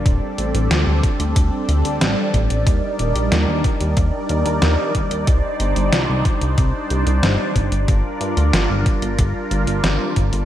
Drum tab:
HH |x-xxx-xxx-xxx-xx|x-xxx-xxx-xxx-xx|x-xxx-xxx-xxx-xx|x-xxx-xxx-xxx-xx|
SD |----o-------o---|----o-------o---|----o-------o---|----o-------o---|
BD |o-----o-o-----o-|o-----o-o-----o-|o-----o-o-----o-|o-----o-o-----o-|